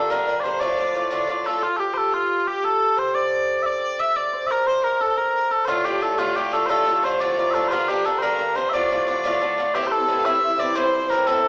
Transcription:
Already playing: A#3 D4 F4 G4 A4 C5 D5
0.09 G2 D3 A#3 D4 A#4
0.26 G2 D3 A#3 D4 A#4
0.40 G2 C5 D5
0.44 D3 A#3 D4 C5
0.60 A2 D3 A3 F4 D5
0.77 A2 D3 A3 F4
0.94 A2 D3 A3 F4
1.11 A2 D3 A3 F4
1.27 A2 D3 A3 F4
1.44 A2 D3 A3 F4 A4
1.61 F4
1.77 G4 A4
1.94 A4 C5
2.12 F4
2.47 G4
2.63 A4
2.97 C5
3.14 D5
3.63 D5 E5
3.99 E5
4.16 D5
4.33 C5
4.47 A#4 E5
4.51 A#4
4.67 C5
4.83 A#4
5.00 A4
5.17 A#4
5.35 A#4
5.51 A4
5.65 A2 D3 A3 F4 C5
5.70 F4
5.84 A2 D3 A3 F4 G4
6.01 A2 D3 A3 F4 A4
6.18 A2 D3 A3 F4
6.35 A2 D3 A3 F4 G4
6.52 A2 D3 A3 F4 A4
6.66 A2 D3 A4 C5
6.70 A3 F4
6.85 A2 D3 A3 F4
7.03 A2 D3 A3 F4 C5
7.20 A2 D3 A3 F4 D5
7.36 A2 D3 A3 F4 A#4
7.51 A2 A4 E5
7.55 D3 A3 F4
7.68 G2 F4 C5
7.72 D3 A#3 D4
7.88 G2 D3 A#3 D4 G4
8.05 G2 D3 A#3 D4 A4
8.18 A#4 C5
8.22 G2 D3 A#3 D4 A#4
8.39 G2 D3 A#3 D4
8.55 G2 D3 A#3 D4 C5
8.69 A2 D5 E5
8.74 D3 A3 F4 D5
8.89 A2 D3 A3 F4
9.07 A2 D3 A3 F4
9.24 A2 D3 A3 F4
9.40 A2 D3 A3 F4
9.57 A2 D3 A3 F4
9.75 A2 E3 C4 E4 G4
9.82 E3 C4 E4
9.87 C5
9.91 A4
10.00 E3 C4 E4
10.07 A2 E3 C4 E4
10.19 F5
10.25 A2 E3 C4 E4 E5
10.33 E3 C4 E4
10.43 E5
10.49 E3 C4 E4
10.58 A2 E3 C4 E4 D5
10.75 A2 E3 C4 E4 C5
10.83 E3 C4 E4
11.00 E3 C4 E4
11.09 A2 E3 C4 E4 A#4
11.26 A2 E3 C4 E4 A4
11.35 E3 C4 E4
11.45 D5

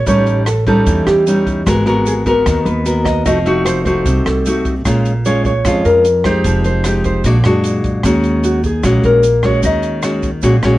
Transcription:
0.06 A1 A2 G3 C#4 D#4 C#5, kick, closed hi-hat, shaker
0.26 closed hi-hat, shaker
0.46 A4, cross-stick, closed hi-hat, shaker
0.67 G3 C#4 D#4 A4, kick, closed hi-hat, shaker
0.87 E2 E3, kick, closed hi-hat, shaker
1.07 E2 G4, cross-stick, closed hi-hat, shaker
1.27 G3 C#4 D#4, closed hi-hat, shaker
1.46 kick, closed hi-hat, shaker
1.66 G#1 G#3 B3 F#4 A#4, kick, cross-stick, closed hi-hat, shaker
1.86 B3 F#4 A#4, closed hi-hat, shaker
2.06 G#4, closed hi-hat, shaker
2.26 B3 F#4 A#4, kick, closed hi-hat, shaker
2.46 D#2 D#3, kick, cross-stick, closed hi-hat, shaker
2.65 D#2 B4, closed hi-hat, shaker
2.86 B3 F#4 A#4, closed hi-hat, shaker
3.04 D#5, kick, cross-stick, closed hi-hat, shaker
3.26 F1 F3 A3 D#4 F#4 D#5, kick, closed hi-hat, shaker
3.46 A3 D#4 F#4, closed hi-hat, shaker
3.65 C5, cross-stick, closed hi-hat, shaker
3.85 A3 D#4 F#4 C5, kick, closed hi-hat, shaker
4.05 C2 C3, kick, closed hi-hat, shaker
4.26 C2 A4, cross-stick, closed hi-hat, shaker
4.46 A3 D#4 F#4, closed hi-hat, shaker
4.65 kick, closed hi-hat, shaker
4.85 A#1 A#2 G#3 C#4 F4, kick, cross-stick, closed hi-hat, shaker
5.05 closed hi-hat, shaker
5.25 G#3 C#4 F4 C#5, closed hi-hat, shaker
5.45 C#5, kick, closed hi-hat, shaker
5.65 F2 G#3 C#4 F4, kick, cross-stick, closed hi-hat, shaker
5.85 F2 A#4, closed hi-hat, shaker
6.04 closed hi-hat, shaker
6.24 G#3 D#4 G4 C5, kick, cross-stick, closed hi-hat, shaker
6.44 F1 F3, kick, closed hi-hat, shaker
6.64 C5, closed hi-hat, shaker
6.84 G#3 D#4 G4, cross-stick, closed hi-hat, shaker
7.04 C5, kick, closed hi-hat, shaker
7.24 A#1 A#2 G#3 D4 F#4 D5, kick, closed hi-hat, shaker
7.43 F#2 G#3 D4 F#4, cross-stick, closed hi-hat, shaker
7.63 closed hi-hat, shaker
7.84 kick, closed hi-hat, shaker
8.03 D#2 D#3 G#3 C#4 F#4, kick, cross-stick, closed hi-hat, shaker
8.24 closed hi-hat, shaker
8.44 F#4, closed hi-hat, shaker
8.64 G#4, kick, closed hi-hat, shaker
8.83 A#1 A#2 G#3 C#4 F#4, kick, cross-stick, closed hi-hat, shaker
9.03 A#1 A#4, closed hi-hat, shaker
9.23 closed hi-hat, shaker
9.43 G#3 C#4 F#4 C#5, kick, cross-stick, closed hi-hat, shaker
9.63 D#2 D#3 D#5, kick, closed hi-hat, shaker
9.83 closed hi-hat, shaker
10.03 G#3 C#4 F#4, cross-stick, closed hi-hat, shaker
10.23 kick, closed hi-hat, shaker
10.43 A#1 A#2 G#3 C#4 F#4, kick, closed hi-hat, shaker
10.63 A#1 G#3 C#4 F#4, cross-stick, closed hi-hat, shaker

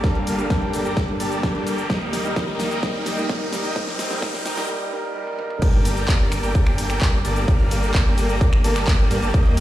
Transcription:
Already playing: G3 A#3, riser
0.03 G1 G3 A#3 D4 A#4 A5, kick, snare, closed hi-hat, shaker
0.15 closed hi-hat
0.27 open hi-hat, shaker
0.38 G3 A#3 D4 A4, closed hi-hat, shaker
0.50 G1 G4 A4 A#4 G5, kick, snare, closed hi-hat, shaker
0.62 closed hi-hat
0.73 G3 A#3 D4 A4, open hi-hat, shaker
0.85 G1 G4 A4 A#4 D5 A#5, closed hi-hat, shaker
0.97 kick, snare, closed hi-hat, shaker
1.08 G3 A#3 D4 A4, closed hi-hat
1.20 G1 G4 A4 A#4 D5 A5, open hi-hat, shaker
1.32 closed hi-hat, shaker
1.43 G2 G4 A4 A#4 D5 G5, kick, snare, closed hi-hat, shaker
1.54 G3 A#3 D4 A4, closed hi-hat
1.67 G1 G4 A4 A#4 D5 G5, open hi-hat, shaker
1.78 closed hi-hat, shaker
1.89 D#2 D#3 G3 A#3 D#4 G4 A#4 D#5, kick, snare, closed hi-hat, shaker
2.02 closed hi-hat
2.13 snare, open hi-hat, shaker
2.24 G3 A#3 D#4 A#4, closed hi-hat, shaker
2.36 D#2 D#4 A#4 D#5 A#5, kick, snare, closed hi-hat, shaker
2.48 closed hi-hat
2.59 G3 A#3 D#4 A#4, snare, open hi-hat, shaker
2.71 D#2 D#4 G4 A#4 D#5 G5, closed hi-hat, shaker
2.82 D#2 G3 A#3 D#4 G4 A#4 D#5 G5, kick, snare, closed hi-hat, shaker
2.94 closed hi-hat
3.06 snare, open hi-hat, shaker
3.17 G3 A#3 D#4 A#4, closed hi-hat, shaker
3.29 D#2 D#4 G4 A#4 D#5, kick, snare, closed hi-hat, shaker
3.41 closed hi-hat
3.52 G3 A#3 D#4 A#4, snare, open hi-hat, shaker
3.64 D#2 D#4 G4 A#4 D#5 G5, closed hi-hat, shaker
3.75 C2 G3 A#3 C4 D#4 G4 A#4 D#5 G5, kick, snare, closed hi-hat, shaker
3.88 snare, closed hi-hat
3.99 snare, open hi-hat, shaker
4.10 G3 A#3 D#4 A#4, snare, closed hi-hat, shaker
4.22 C2 G3 A#3 D#4 G4 A#4 D#5 G5, kick, snare, closed hi-hat, shaker
4.34 snare, closed hi-hat
4.46 snare, open hi-hat, shaker
4.57 G3 A#3 D#4 A#4, snare, closed hi-hat, shaker
4.68 G3 A#3 D#4 A#4, swell
4.91 G3 A#3 D#4 A#4
5.15 G3 A#3 D#4 A#4
5.27 high tom
5.38 G3 A#3 D#4 A#4, mid tom
5.50 mid tom
5.62 G1 G3 A#3 G4 A4 A#4 D5 G5, kick, closed hi-hat, crash, ride, shaker
5.74 closed hi-hat
5.85 open hi-hat, ride, shaker
5.97 closed hi-hat, shaker
6.08 G1 G4 A4 A#4 D5 A5, kick, clap, closed hi-hat, ride, shaker
6.20 closed hi-hat
6.32 finger snap, open hi-hat, ride, shaker
6.43 G1 G4 A4 A#4 D5 G5, closed hi-hat, shaker
6.55 kick, closed hi-hat, ride, shaker
6.67 finger snap, closed hi-hat
6.78 open hi-hat, ride, shaker
6.90 finger snap, closed hi-hat, shaker
7.01 G1 G4 A4 D5 G5, kick, clap, closed hi-hat, ride, shaker
7.13 closed hi-hat
7.25 G1 G4 A4 A#4 D5 A5, open hi-hat, ride, shaker
7.36 closed hi-hat, shaker
7.48 G1 G4 A#4 D5 F5, kick, closed hi-hat, ride, shaker
7.60 closed hi-hat
7.71 open hi-hat, ride, shaker
7.83 closed hi-hat, shaker
7.94 G1 A#4, kick, clap, closed hi-hat, ride, shaker
8.06 closed hi-hat
8.18 open hi-hat, ride, shaker
8.29 G1 G4 A4 A#4 D5 A#5, closed hi-hat, shaker
8.41 kick, closed hi-hat, ride, shaker
8.53 finger snap, closed hi-hat
8.64 G1 G4 A4 A#4 D5 A5, open hi-hat, ride, shaker
8.76 finger snap, clap, closed hi-hat, shaker
8.88 kick, clap, closed hi-hat, ride, shaker
8.99 G1 G4 A4 A#4 D5 G5, closed hi-hat
9.11 G2 G4 A4 A#4 D5 F5, open hi-hat, ride, shaker
9.22 G1 G4 A4 A#4 D5 A5, closed hi-hat, shaker
9.34 D#2 D#3 D#4 G4 A#4 D#5 G5, kick, closed hi-hat, ride, shaker
9.46 closed hi-hat

